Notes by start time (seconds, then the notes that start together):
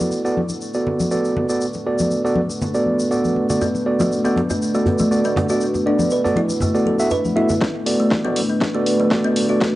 Already playing: A3 B3 D4 F#4 A4 B4 D5
0.01 high conga
0.11 muted conga, shaker
0.25 B3 F#4 A4 D5, shaker
0.37 high conga
0.49 muted conga, shaker
0.61 shaker
0.74 B3 F#4 A4 D5, shaker
0.87 low conga
1.00 muted conga, high conga, shaker
1.11 B3 F#4 A4 D5, shaker
1.25 shaker
1.36 muted conga, low conga
1.49 B3 F#4 A4 D5, shaker
1.61 shaker
1.73 muted conga, shaker
1.86 B3 F#4 A4 D5
1.99 high conga, shaker
2.11 muted conga, shaker
2.25 B3 F#4 A4 D5, shaker
2.36 high conga
2.50 muted conga, shaker
2.62 low conga, shaker
2.74 B3 F#4 A4 D5, shaker
2.86 high conga
3.00 muted conga, shaker
3.11 B3 F#4 A4 D5, shaker
3.25 high conga, shaker
3.36 muted conga
3.50 B3 F#4 A4 D5, low conga, shaker
3.61 B3, djembe tone, shaker
3.75 muted conga, shaker
3.86 B3 F#4 A4 D5
4.00 A3, djembe slap, high conga, djembe tone, shaker
4.11 muted conga, shaker
4.24 B3 F#4 A4 D5, shaker
4.36 djembe slap, high conga
4.50 B3, muted conga, djembe tone, shaker
4.62 shaker
4.74 A3 B3 F#4 A4 D5, shaker
4.86 djembe tone, djembe bass, low conga
4.99 A3, muted conga, high conga, shaker
5.11 B3 F#4 A4 D5, shaker
5.25 B3, shaker
5.36 muted conga, djembe slap, djembe tone, low conga
5.49 B3 F#4 A4 D5, shaker
5.61 shaker
5.74 muted conga, djembe tone, shaker
5.86 B3 D4 F#4 A4 D5
5.99 high conga, shaker
6.10 B4, muted conga, shaker
6.24 B3 F#4 A4 D5, djembe tone, shaker
6.36 E4, djembe slap, high conga
6.49 muted conga, shaker
6.60 A3, djembe tone, low conga, djembe bass, shaker
6.75 B3 F#4 A4 D5, shaker
6.86 A4, high conga
6.99 B3 F#4 A4 E5, muted conga, shaker
7.10 B4, djembe tone, shaker
7.25 high conga, shaker
7.36 B3 E4 F#4 A4 E5, muted conga
7.49 djembe tone, low conga, shaker
7.61 A3 B3 D4 B4, kick, snare
7.86 B3 F#4 A4 D5, open hi-hat
8.00 A3
8.11 kick, snare
8.24 B3 F#4 A4 D5, mid tom
8.36 mid tom, open hi-hat
8.49 B3
8.61 kick, snare
8.75 A3 B3 F#4 A4 D5
8.86 open hi-hat
9.00 A3, mid tom
9.11 B3 F#4 A4 D5, kick, snare
9.24 B3
9.36 open hi-hat
9.49 B3 F#4 A4 D5
9.61 kick, snare